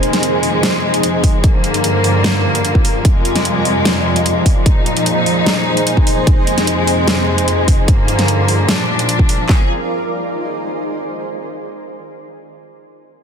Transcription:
Already playing: string section F2 C3 G#3, ambient pad F3 A#3 D#4 G#4 C5
0.03 closed hi-hat
0.13 snare, closed hi-hat
0.23 closed hi-hat
0.43 open hi-hat
0.63 snare, closed hi-hat
0.94 closed hi-hat
1.03 closed hi-hat
1.24 kick, open hi-hat
1.44 string section G2 D3 A#3, ambient pad G3, kick, closed hi-hat
1.48 ambient pad F4
1.56 ambient pad A#4
1.64 closed hi-hat
1.74 closed hi-hat
1.84 closed hi-hat
2.04 open hi-hat
2.15 ambient pad D5
2.24 snare, closed hi-hat
2.55 closed hi-hat
2.65 closed hi-hat
2.75 kick
2.85 open hi-hat
3.05 string section F2 C3 G#3, ambient pad F3, kick, closed hi-hat
3.25 closed hi-hat
3.34 ambient pad D#4, snare, closed hi-hat
3.45 closed hi-hat
3.65 ambient pad G#4, open hi-hat
3.78 ambient pad C5
3.85 snare, closed hi-hat
4.16 closed hi-hat
4.26 closed hi-hat
4.46 kick, open hi-hat
4.66 string section A#2 F3 D#4, ambient pad A#3, kick, closed hi-hat
4.86 closed hi-hat
4.97 closed hi-hat
5.06 closed hi-hat
5.26 open hi-hat
5.46 snare, closed hi-hat
5.77 closed hi-hat
5.87 closed hi-hat
5.97 kick
6.07 open hi-hat
6.27 string section F2 C3 G#3, ambient pad F3, kick, closed hi-hat
6.47 closed hi-hat
6.58 snare, closed hi-hat
6.67 closed hi-hat
6.87 open hi-hat
7.08 snare, closed hi-hat
7.38 closed hi-hat
7.48 closed hi-hat
7.68 kick, open hi-hat
7.88 string section G2 D3 A#3, kick, closed hi-hat
7.96 ambient pad F4
8.04 ambient pad A#4, closed hi-hat
8.19 snare, closed hi-hat
8.28 closed hi-hat
8.48 open hi-hat
8.68 string section A#2 F3 D4, snare, closed hi-hat
8.99 closed hi-hat
9.09 closed hi-hat
9.19 kick
9.29 open hi-hat
9.49 string section F3 C4 G#4, ambient pad D#4, kick, snare, clap
9.55 ambient pad G#4
9.62 ambient pad C5

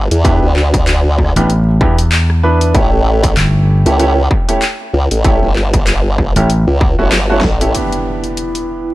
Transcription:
0.11 wobble bass E2, closed hi-hat
0.25 grand piano B3 D4 E4 G4, kick, closed hi-hat
0.42 wobble bass D2
0.56 clap
0.74 kick, closed hi-hat
0.87 clap, closed hi-hat
1.18 kick
1.25 cross-stick
1.29 cross-stick
1.36 slap bass A1, grand piano B3 D4 E4 G4, closed hi-hat
1.50 closed hi-hat
1.81 slap bass E2, grand piano B3 D4 E4 G4, kick
1.99 closed hi-hat
2.12 clap, closed hi-hat
2.30 cross-stick
2.43 grand piano B3 D4 E4 B4
2.61 closed hi-hat
2.74 wobble bass A1, grand piano A3 C#4 E4 G4, kick, closed hi-hat
3.23 kick, closed hi-hat
3.37 slap bass G1, clap, closed hi-hat
3.86 wobble bass C#2, grand piano A3 C#4 E4 G4, closed hi-hat
4.00 grand piano A3 C#4 E4 G4, closed hi-hat
4.31 kick
4.48 grand piano A3 C#4 E4 G4, closed hi-hat
4.62 clap, closed hi-hat
4.93 wobble bass C#2
5.11 wobble bass A1, closed hi-hat
5.24 grand piano A3 C#4 E4 G4, kick, closed hi-hat
5.42 wobble bass G1
5.56 clap
5.74 kick, closed hi-hat
5.87 clap, closed hi-hat
6.18 kick, cross-stick
6.36 slap bass A1, grand piano A3 C#4 E4 G4, closed hi-hat
6.50 closed hi-hat
6.67 wobble bass C#2
6.81 kick, cross-stick
6.99 wobble bass G1, grand piano A3 C#4 E4 F#4
7.12 snare, clap, closed hi-hat
7.30 grand piano A3 C#4 E4 F#4
7.41 wobble bass A1, kick, snare
7.61 grand piano A3 C#4 E4 G4, closed hi-hat
7.74 grand piano B3 D4 E4 G4, ambient pad E4, closed hi-hat, impact
7.92 closed hi-hat
8.06 ambient pad B4
8.24 closed hi-hat
8.37 closed hi-hat
8.55 closed hi-hat

